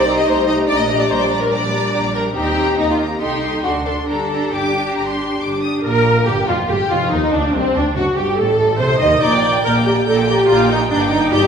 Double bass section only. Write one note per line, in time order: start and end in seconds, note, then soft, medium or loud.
0.00 0.23 C2 medium
0.28 0.65 C2 medium
0.70 1.06 A#1 medium
1.11 1.48 A#1 soft
1.52 1.89 A#1 medium
1.94 2.31 A#1 soft
2.36 2.73 D#2 medium
2.79 3.16 D#2 soft
3.21 3.59 C2 soft
3.64 4.02 D2 soft
4.08 4.47 G1 soft
4.53 4.92 G1 soft
4.97 5.36 G1 soft
5.41 5.80 G1 soft
5.85 6.24 A#1 medium
6.28 6.49 G1 medium
6.49 6.57 F1 medium
6.71 6.79 G1 medium
6.92 7.12 F1 medium
7.13 7.33 D#2 medium
7.34 7.42 D2 medium
7.55 7.63 C2 medium
7.76 7.84 D2 medium
7.96 8.04 F#1 medium
8.17 8.38 G1 medium
8.39 8.80 A1 medium
8.80 9.01 C2 medium
9.01 9.22 D#2 medium
9.22 9.59 A#1 medium
9.65 10.02 A#1 soft
10.08 10.44 A#1 medium
10.50 10.86 A#1 medium
10.91 11.27 G1 medium
11.33 11.47 G1 medium